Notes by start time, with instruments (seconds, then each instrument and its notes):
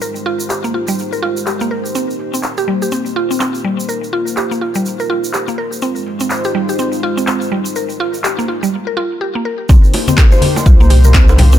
Already playing: analog synth pad G#3 D#4 C5
0.01 analog synth pad G4, synth pluck A#4, shaker
0.15 shaker
0.26 synth pluck F4, open hi-hat
0.40 open hi-hat, shaker
0.50 synth pluck G4, finger snap, clap, shaker
0.64 synth pluck A#3, shaker
0.74 synth pluck F4, open hi-hat
0.88 synth pluck G3, shaker
0.99 shaker
1.13 synth pluck A#4, shaker
1.22 synth pluck F4, open hi-hat
1.37 shaker
1.46 synth pluck G4, finger snap, clap, shaker
1.60 synth pluck A#3, shaker
1.71 synth pluck A#4, open hi-hat
1.85 shaker
1.95 analog synth pad A#3, synth pluck C4, shaker
2.10 shaker
2.19 open hi-hat
2.34 synth pluck C4, shaker
2.43 finger snap, clap, shaker
2.57 synth pluck G4, shaker
2.68 synth pluck G3, open hi-hat
2.82 synth pluck G4, shaker
2.92 synth pluck C4, shaker
3.06 shaker
3.16 synth pluck F4, open hi-hat
3.31 synth pluck C4, shaker
3.40 synth pluck C4, finger snap, clap, shaker
3.55 shaker
3.64 synth pluck G3, open hi-hat
3.80 shaker
3.89 analog synth pad F4, synth pluck A#4, shaker
4.04 shaker
4.13 synth pluck F4, open hi-hat
4.27 open hi-hat, shaker
4.37 synth pluck G4, finger snap, clap, shaker
4.51 synth pluck A#3, shaker
4.61 synth pluck F4, open hi-hat
4.75 synth pluck G3, shaker
4.86 shaker
5.00 synth pluck A#4, shaker
5.09 synth pluck F4, open hi-hat
5.24 shaker
5.34 synth pluck G4, finger snap, clap, shaker
5.48 synth pluck A#3, shaker
5.58 synth pluck A#4, open hi-hat
5.72 shaker
5.82 analog synth pad G#3 D#4 F4 C5, synth pluck C4, shaker
5.96 shaker
6.06 open hi-hat
6.20 synth pluck C4, shaker
6.30 finger snap, clap, shaker
6.44 synth pluck G4, shaker
6.55 synth pluck G3, open hi-hat
6.69 synth pluck G4, shaker
6.79 synth pluck C4, shaker
6.92 shaker
7.03 synth pluck F4, open hi-hat
7.17 synth pluck C4, shaker
7.27 synth pluck C4, finger snap, clap, shaker
7.41 shaker
7.52 synth pluck G3, open hi-hat
7.65 shaker
7.76 synth pluck A#4, shaker
7.89 shaker
8.00 synth pluck F4, open hi-hat
8.14 open hi-hat, shaker
8.24 synth pluck G4, finger snap, clap, shaker
8.39 synth pluck A#3, shaker
8.48 synth pluck F4, open hi-hat
8.63 synth pluck G3, shaker
8.87 synth pluck A#4
8.97 synth pluck F4
9.21 synth pluck G4
9.35 synth pluck A#3
9.45 synth pluck A#4
9.69 analog synth bass C2, analog synth pad A#3 D#4 G4 C5, synth pluck C4, kick, low bongo, high conga, shaker
9.84 shaker
9.94 open hi-hat, low bongo
10.08 synth pluck C4, high conga, shaker
10.18 synth pluck G4, finger snap, kick, clap, high bongo, shaker
10.32 synth pluck C5, low bongo, shaker
10.42 open hi-hat, high conga
10.56 low bongo, shaker
10.66 analog synth bass C2, synth pluck F4, kick, shaker
10.80 synth pluck A#3, shaker
10.90 synth pluck G4, mid tom, open hi-hat, low bongo
11.04 synth pluck A#4, mid tom, shaker
11.14 synth pluck C4, finger snap, kick, clap, low bongo, shaker
11.28 high bongo, shaker
11.38 synth pluck G3, open hi-hat, high conga, low conga
11.52 synth pluck C4, low bongo, shaker